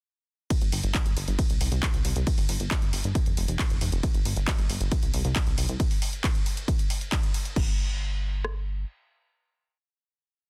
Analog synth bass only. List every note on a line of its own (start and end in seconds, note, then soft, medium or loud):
0.61 0.70 G1 medium
0.72 0.82 G1 loud
0.83 0.93 G1 medium
1.05 1.15 G1 medium
1.17 1.26 G1 loud
1.28 1.37 G1 medium
1.50 1.59 C2 medium
1.61 1.70 C2 loud
1.72 1.81 C2 medium
1.94 2.03 C2 medium
2.05 2.14 C2 loud
2.16 2.25 C2 medium
2.38 2.47 G1 loud
2.49 2.58 G1 loud
2.60 2.69 G1 medium
2.82 2.91 G1 medium
2.93 3.02 G1 loud
3.04 3.13 G1 medium
3.26 3.35 F1 medium
3.37 3.46 F1 loud
3.48 3.57 F1 medium
3.70 3.79 F1 medium
3.81 3.90 F1 loud
3.92 4.01 F1 medium
4.14 4.23 G1 medium
4.25 4.34 G1 loud
4.36 4.46 G1 loud
4.58 4.68 G1 medium
4.69 4.79 G1 loud
4.80 4.90 G1 medium
5.03 5.12 C2 medium
5.14 5.23 C2 loud
5.25 5.34 C2 medium
5.47 5.56 C2 medium
5.58 5.67 C2 loud
5.69 5.78 C2 medium
7.56 8.85 G1 loud